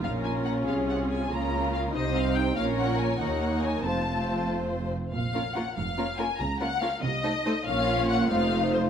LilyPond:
<<
  \new Staff \with { instrumentName = "Violin section" } { \time 6/8 \key bes \minor \tempo 4. = 94 f''8 aes''8 ges''8 f''8 ges''8 aes''8 | bes''4 f''8 ees''8 f''8 g''8 | f''8 ges''8 aes''8 ges''4 aes''8 | a''4. r4. |
f''4 ges''8 f''4 aes''8 | bes''8 ges''8 f''8 ees''4. | f''4 ges''8 f''4 c''8 | }
  \new Staff \with { instrumentName = "Violin section" } { \time 6/8 \key bes \minor << { bes'4. aes'4. | bes'4. c''4. | des''4. des''4. | c''2~ c''8 r8 |
r8 bes'8 bes'8 r8 bes'8 bes'8 | r8 bes'8 bes'8 r8 c''8 c''8 | des''4. c''4. | } \\ { des'2. | f'4. ees'4. | bes'4. bes'4. | f'2~ f'8 r8 |
r8 f'8 f'8 r8 f'8 f'8 | r8 f'8 f'8 r8 a'8 a'8 | f'4. f'4. | } >> }
  \new Staff \with { instrumentName = "Viola section" } { \time 6/8 \key bes \minor <des' f'>2. | <bes des'>4. <c' ees'>4. | <bes des'>4. <bes ees'>4. | <a c'>2~ <a c'>8 r8 |
r8 <bes des'>8 <bes des'>8 r8 <bes des'>8 <bes des'>8 | r8 <bes des'>8 <bes des'>8 r8 <a ees'>8 <a ees'>8 | <bes des'>4. <a ees'>4. | }
  \new Staff \with { instrumentName = "Cello section" } { \clef bass \time 6/8 \key bes \minor bes,4. c4. | des4. c4. | bes,4. ees,4. | f,2~ f,8 r8 |
bes,4. f,4. | des4. c4. | bes,4. f,4. | }
  \new Staff \with { instrumentName = "Double bass section" } { \clef bass \time 6/8 \key bes \minor bes,,4. c,4. | des,4. c,4. | bes,,4. ees,4. | f,,2~ f,,8 r8 |
bes,,4. f,,4. | des,4. c,4. | bes,,4. f,,4. | }
>>